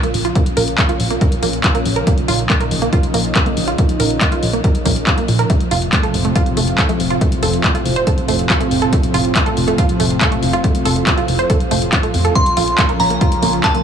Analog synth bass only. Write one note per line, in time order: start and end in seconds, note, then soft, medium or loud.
0.14 0.31 A#1 medium
0.57 0.74 A#1 loud
1.00 1.16 A#1 medium
1.43 1.59 A#1 medium
1.85 2.02 A#1 medium
2.28 2.45 A#1 medium
2.71 2.88 A#1 medium
3.14 3.31 A#1 loud
3.57 3.74 A#1 medium
4.00 4.16 A#1 loud
4.43 4.59 A#1 medium
4.86 5.02 A#1 loud
5.28 5.45 A#2 medium
5.71 5.88 F1 loud
6.14 6.31 F1 loud
6.57 6.74 F1 loud
7.00 7.16 F1 medium
7.43 7.59 F1 loud
7.85 8.02 F1 medium
8.28 8.45 F1 loud
8.71 8.88 F1 medium
9.14 9.31 F1 loud
9.57 9.74 F1 medium
10.00 10.16 F1 loud
10.43 10.59 F1 medium
10.85 11.02 F1 loud
11.28 11.45 F1 medium
11.71 11.88 F1 loud
12.14 12.31 F2 medium
12.57 12.74 A#1 loud
13.00 13.16 A#1 loud
13.43 13.59 A#1 loud